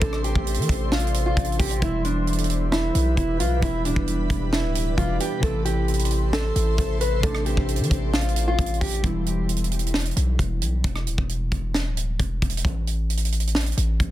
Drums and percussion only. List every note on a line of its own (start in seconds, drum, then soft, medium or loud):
0.02 kick loud
0.02 closed hi-hat medium
0.13 cross-stick medium
0.24 closed hi-hat medium
0.35 kick medium
0.47 closed hi-hat medium
0.54 closed hi-hat medium
0.62 closed hi-hat medium
0.69 kick loud
0.69 closed hi-hat medium
0.92 snare loud
0.99 closed hi-hat medium
1.07 closed hi-hat soft
1.14 closed hi-hat medium
1.37 kick medium
1.37 closed hi-hat medium
1.44 closed hi-hat medium
1.52 closed hi-hat soft
1.60 kick loud
1.60 closed hi-hat medium
1.60 open hi-hat loud
1.71 closed hi-hat medium
1.82 kick loud
1.82 closed hi-hat medium
2.05 closed hi-hat medium
2.27 closed hi-hat soft
2.33 closed hi-hat medium
2.38 closed hi-hat medium
2.44 closed hi-hat medium
2.50 closed hi-hat medium
2.72 snare loud
2.95 closed hi-hat medium
3.17 kick medium
3.17 closed hi-hat medium
3.40 closed hi-hat medium
3.62 kick loud
3.62 closed hi-hat medium
3.85 closed hi-hat medium
3.96 kick medium
4.08 closed hi-hat medium
4.30 kick loud
4.30 closed hi-hat medium
4.53 snare loud
4.75 closed hi-hat loud
4.98 kick medium
4.98 closed hi-hat medium
5.20 closed hi-hat medium
5.43 kick loud
5.43 closed hi-hat medium
5.65 closed hi-hat medium
5.88 closed hi-hat soft
5.94 closed hi-hat medium
5.99 closed hi-hat medium
6.05 closed hi-hat medium
6.11 closed hi-hat medium
6.33 snare loud
6.56 closed hi-hat loud
6.78 kick medium
6.78 closed hi-hat medium
7.01 closed hi-hat medium
7.23 kick loud
7.23 closed hi-hat medium
7.35 cross-stick medium
7.46 closed hi-hat medium
7.57 kick medium
7.69 closed hi-hat medium
7.76 closed hi-hat medium
7.83 closed hi-hat medium
7.91 kick loud
7.91 closed hi-hat medium
8.14 snare loud
8.21 closed hi-hat medium
8.29 closed hi-hat soft
8.36 closed hi-hat medium
8.59 kick medium
8.59 closed hi-hat medium
8.66 closed hi-hat medium
8.74 closed hi-hat soft
8.81 kick loud
8.81 closed hi-hat medium
8.81 open hi-hat loud
8.93 closed hi-hat medium
9.04 kick loud
9.04 closed hi-hat medium
9.26 closed hi-hat medium
9.49 closed hi-hat medium
9.56 closed hi-hat medium
9.64 closed hi-hat medium
9.72 closed hi-hat medium
9.79 closed hi-hat medium
9.87 closed hi-hat medium
9.94 snare loud
10.00 closed hi-hat medium
10.05 closed hi-hat medium
10.11 closed hi-hat soft
10.17 closed hi-hat medium
10.39 kick medium
10.39 closed hi-hat medium
10.62 closed hi-hat medium
10.84 kick loud
10.84 closed hi-hat medium
10.96 cross-stick medium
11.07 closed hi-hat medium
11.18 kick medium
11.29 closed hi-hat medium
11.52 kick loud
11.52 closed hi-hat medium
11.74 snare loud
11.97 closed hi-hat medium
12.20 kick medium
12.20 closed hi-hat medium
12.42 kick loud
12.42 closed hi-hat medium
12.50 closed hi-hat medium
12.57 closed hi-hat medium
12.65 kick loud
12.65 closed hi-hat medium
12.87 closed hi-hat medium
13.10 closed hi-hat medium
13.17 closed hi-hat medium
13.25 closed hi-hat medium
13.32 closed hi-hat medium
13.40 closed hi-hat medium
13.47 closed hi-hat medium
13.55 snare loud
13.61 closed hi-hat medium
13.66 closed hi-hat medium
13.72 closed hi-hat soft
13.77 closed hi-hat medium
14.00 kick medium
14.00 closed hi-hat medium